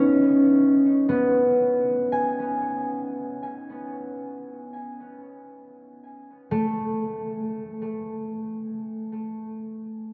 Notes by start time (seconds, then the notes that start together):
Already playing: B3 C#4 D#4 E4 C#5
1.09 B3
2.12 G#5
6.51 A3